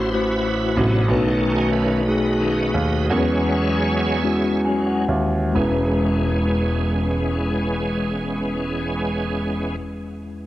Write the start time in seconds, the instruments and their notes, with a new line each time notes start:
Already playing: grand piano A1, tine electric piano A2 A3 E4 F#4 C5, tonewheel organ C5
0.11 tine electric piano A3 E4 F#4 C5, tonewheel organ E4 F#4 B4
0.76 grand piano A1, tonewheel organ C3 F#3 B3 D#4 F#4 A4
1.08 grand piano B1, tine electric piano B2 A3 D4 F#4 B4, tonewheel organ D#3 A3 C#4
1.16 tine electric piano D#4
1.55 tonewheel organ G#4
1.72 tonewheel organ B4
2.06 tine electric piano A3 D#4 F#4 G#4, tonewheel organ F#4 B4 D#5
2.40 tonewheel organ D#3 A3 C#4
2.74 grand piano D#2
3.09 grand piano E2, tine electric piano E3 G#3 C#4 E4 A#4, tonewheel organ F#3 G#3 C#4 G#4 C#5 E5
3.18 tine electric piano B4
4.24 tine electric piano G#3 C#4 E4 F#4
4.65 tonewheel organ F#3 G#3 C#4, tine electric piano G#5
4.86 tine electric piano F#5
5.08 grand piano D#2, tine electric piano E5
5.53 grand piano E1, tine electric piano E2 G#3 C#4 E4, tonewheel organ E3 G#3 B3 C#4 G#4
5.57 tine electric piano B4